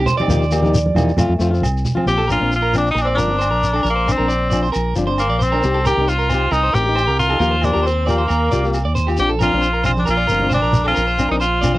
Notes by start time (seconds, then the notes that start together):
0.06 C5, low conga, shekere
0.17 D#4 G4 D5, high conga, low agogo
0.22 C4
0.28 D#2 F3 A#3 D#4 G4, low conga, shekere
0.43 shekere
0.51 F3 A#3 D#4 G4, low agogo, shekere
0.62 A#3 D#4 G4, high conga, shekere
0.75 shekere
0.86 high conga
0.95 E2 F3 A#3 D#4 G4, high conga, low conga, low agogo, shekere
1.09 shekere
1.17 F2 A3 C4 F4, low conga, low agogo, shekere
1.29 F2
1.39 F2 A3 C4 F4, shekere
1.51 C4 F4, shekere
1.62 C2, low agogo, shekere
1.77 shekere
1.85 low conga, shekere
1.95 C4 F4, high conga, low agogo
2.06 A#1 F3 C4 G4, muted steel-string acoustic guitar stroke, shekere
2.18 A4
2.28 F3 C4 D4 A#4, low agogo, shekere
2.32 F4
2.41 A#1 C4 D4
2.52 F4, shekere
2.62 A#4
2.73 F3 C4 D4, low agogo, shekere
2.77 D4
2.87 D#4, shekere
2.95 A#1, muted clean electric guitar stroke, low agogo, shekere
3.01 C4 D4
3.07 D5
3.15 G1 F3 C4 D4 A#4, shekere
3.19 D4
3.28 C4 D4
3.39 C5, low agogo, shekere
3.51 A#1 A#4
3.63 shekere
3.74 D4 A4, low agogo
3.83 A#1 A#4, shekere
3.90 A#3
3.96 C5
4.07 C4 D4, low agogo, shekere
4.12 C4
4.18 A#1 C4 D4 A#4
4.28 D5, shekere
4.50 F3 C4 D5, low agogo, shekere
4.54 D4
4.63 C5, shekere
4.72 A#1 A#4, low agogo, shekere
4.96 G1 F3 C4 D4, shekere
5.07 C4 D4 C5
5.18 A#3, low agogo, shekere
5.30 A#1 D5
5.39 C4 C5, shekere
5.52 C4 D4 A#4, low agogo
5.63 C2 C4 D#4 G4, shekere
5.74 A4
5.84 C4 D#4 G4 A#4, low agogo, shekere
5.89 G4
5.97 C2 G4
6.01 D#4
6.08 F4 C5, shekere
6.18 A#4
6.29 C4 D#4 C5, low agogo, shekere
6.34 G4
6.51 C2 D#4 A#4, low agogo, shekere
6.63 C5
6.73 A1 C4 D#4 G4 A#4, shekere
6.78 G4
6.86 D#4 G4
6.95 C5, low agogo, shekere
7.07 C2 A#4
7.19 F4, shekere
7.30 D#4 G4 A4, low agogo
7.40 D#2 F3 A#3 F4 G4 A#4, shekere
7.51 C5
7.62 F3 A#3 D4 F4 G4, low agogo, shekere
7.74 D#2 A#3 F4 G4 A#4, shekere
7.83 C4 C5, shekere
8.06 F3 A#3 F4 G4 D5, low agogo, shekere
8.18 C5
8.28 D#2 A#4, low agogo, shekere
8.51 C2 A#3 F4 G4 D5, muted steel-string acoustic guitar stroke, shekere
8.64 A#3 F4 G4, shekere
8.74 low agogo, shekere
8.85 D#2 D5
8.95 C5, shekere
9.07 F4 G4, muted steel-string acoustic guitar stroke, low agogo, shekere
9.17 A#1 F3 C4 D4 G4, shekere
9.29 A4
9.39 F3 C4 D4 F4 A#4, low agogo, shekere
9.53 A#1 C4 D4
9.61 C5, shekere
9.73 A#4
9.84 C4 D4 F4 C5, low conga, low agogo, shekere
9.97 D4, high conga, shekere
10.05 A#1 A#4, low agogo, shekere
10.10 F4
10.17 D5
10.27 G1 F3 A#4, shekere
10.32 C4 D4
10.40 D4, high conga
10.44 C4
10.49 C5, low conga, low agogo, shekere
10.54 D4
10.62 A#1 A#4
10.73 low conga, shekere
10.84 D4 F4 A4, low agogo
10.89 C4
10.94 A#1 A#4, shekere
11.07 C5
11.18 F3 C4 D4, low agogo, shekere
11.29 A#1 D4 D#4 A#4
11.33 C4
11.40 F4 C5, shekere
11.61 F3 C4 D5, low conga, low agogo, shekere
11.65 D4
11.74 C5, high conga